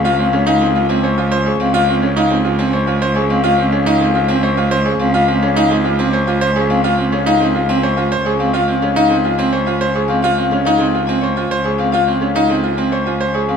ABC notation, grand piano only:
X:1
M:3/4
L:1/16
Q:1/4=106
K:Db
V:1 name="Grand piano"
F C D E C F C c F c A C | F C D E C F C c F c A C | F C D E C F C c F c A C | F C D E C F C c F c A C |
F C D E C F C c F c A C | F C D E C F C c F c A C | F C D E C F C c F c A C | F C D E C F C c F c A C |]